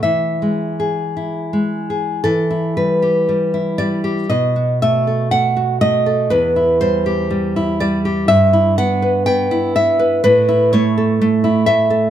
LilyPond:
\new Staff \with { instrumentName = "Nylon-string guitar" } { \time 2/4 \key e \major \tempo 4 = 60 << { e''4 r4 | \key e \minor a'8 b'4 d''8 | dis''8 e''8 fis''8 dis''8 | b'8 c''4 d''8 |
e''8 fis''8 g''8 e''8 | \key a \lydian b'8 cis''4 e''8 | } \\ { \tuplet 3/2 { e8 gis8 gis'8 e'8 gis8 gis'8 } | e16 e'16 g16 g'16 g16 e'16 g16 g'16 | b,16 fis'16 a16 a'16 a16 fis'16 a16 a'16 | e,16 e'16 g16 g'16 g16 e'16 g16 g'16 |
g,16 e'16 b16 b'16 b16 e'16 b16 b'16 | a,16 e'16 a16 a'16 a16 e'16 a16 a'16 | } >> }